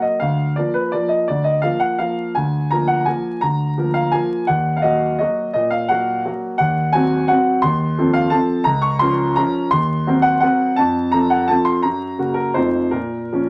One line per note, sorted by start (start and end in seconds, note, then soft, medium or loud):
0.00 0.18 F#3 soft
0.00 0.18 A#3 soft
0.00 0.18 A#4 soft
0.00 0.21 D#5 medium
0.20 0.56 D2 soft
0.20 0.56 F5 medium
0.56 0.90 F3 soft
0.56 0.90 A#3 soft
0.56 0.91 A#4 soft
0.56 0.75 D5 medium
0.74 0.93 B4 medium
0.92 1.26 F3 soft
0.92 1.26 A#3 soft
0.92 1.26 A#4 soft
0.92 1.11 D5 medium
1.09 1.28 D#5 medium
1.28 1.63 D2 soft
1.28 1.46 D5 medium
1.44 1.63 D#5 medium
1.62 1.96 F3 soft
1.62 1.96 A#3 soft
1.62 1.97 A#4 soft
1.62 1.81 F5 medium
1.80 1.99 F#5 medium
1.98 2.32 F3 soft
1.98 2.33 A#3 soft
1.98 2.33 A#4 soft
1.98 2.35 F5 medium
2.35 2.71 D2 soft
2.35 2.71 G#5 medium
2.71 3.04 F3 soft
2.71 3.05 A#3 soft
2.71 3.05 A#4 soft
2.71 2.89 A#5 medium
2.88 3.07 F#5 medium
3.05 3.40 F3 soft
3.05 3.40 A#3 soft
3.05 3.40 A#4 soft
3.05 3.42 G#5 medium
3.41 3.77 D2 soft
3.41 3.95 A#5 medium
3.78 4.10 F3 soft
3.78 4.11 A#3 soft
3.78 4.11 A#4 soft
3.94 4.13 F5 medium
4.11 4.45 F3 soft
4.11 4.45 A#3 soft
4.11 4.45 A#4 soft
4.11 4.47 G#5 medium
4.47 4.83 D#2 soft
4.47 4.76 F#5 medium
4.77 4.84 F5 medium
4.82 5.17 F#3 soft
4.82 5.17 A#3 soft
4.82 5.17 F#4 soft
4.82 5.17 D#5 medium
5.19 5.52 F#3 soft
5.19 5.53 A#3 soft
5.19 5.53 F#4 soft
5.19 5.52 D#5 medium
5.53 5.89 A#2 soft
5.53 5.72 D#5 medium
5.70 5.89 F5 medium
5.88 6.22 F#3 soft
5.88 6.22 A#3 soft
5.88 6.22 F#4 soft
5.88 6.24 F#5 medium
6.25 6.56 F#3 soft
6.25 6.57 A#3 soft
6.25 6.57 F#4 soft
6.58 6.93 D#2 medium
6.58 6.93 F#5 medium
6.93 7.26 F#3 soft
6.93 7.26 C4 soft
6.93 7.27 F#4 soft
6.93 7.29 G#5 medium
7.28 7.61 F#3 soft
7.28 7.61 C4 soft
7.28 7.61 F#4 soft
7.28 7.63 F#5 medium
7.62 7.97 D#2 medium
7.62 8.14 C6 medium
7.98 8.29 F3 soft
7.98 8.30 C4 soft
7.98 8.30 A4 soft
8.13 8.32 F5 medium
8.30 8.63 F3 soft
8.30 8.63 C4 soft
8.30 8.63 A4 soft
8.30 8.66 A5 medium
8.64 9.00 C#2 medium
8.64 8.83 A#5 medium
8.82 9.01 C#6 medium
8.99 9.34 F3 soft
8.99 9.34 C#4 soft
8.99 9.34 A#4 soft
8.99 9.36 C6 medium
9.36 9.69 F3 soft
9.36 9.69 C#4 soft
9.36 9.69 A#4 soft
9.36 9.71 A#5 medium
9.71 10.06 D#2 medium
9.71 10.23 C6 medium
10.07 10.39 F#3 soft
10.07 10.39 C4 soft
10.07 10.40 A#4 soft
10.22 10.39 F#5 medium
10.40 10.74 F#3 soft
10.40 10.75 C4 soft
10.40 10.75 A#4 soft
10.40 10.77 F#5 medium
10.76 11.13 F2 medium
10.76 11.13 A5 medium
11.11 11.46 F3 soft
11.11 11.46 C4 soft
11.11 11.46 A4 soft
11.11 11.31 A#5 medium
11.30 11.49 F#5 medium
11.47 11.81 F3 soft
11.47 11.81 C4 soft
11.47 11.81 A4 soft
11.47 11.66 A5 medium
11.65 11.83 C6 medium
11.82 12.17 F#2 soft
11.82 12.36 A#5 medium
12.19 12.52 C#3 soft
12.19 12.52 A#3 soft
12.19 12.52 F#4 soft
12.34 12.54 A#4 medium
12.54 12.93 F2 soft
12.54 12.90 F3 soft
12.54 12.90 A3 soft
12.54 12.91 D#4 soft
12.54 12.93 C5 medium
12.91 13.31 A#2 soft
12.91 13.49 A#4 medium
13.32 13.49 F3 soft
13.32 13.49 A#3 soft
13.32 13.49 C#4 soft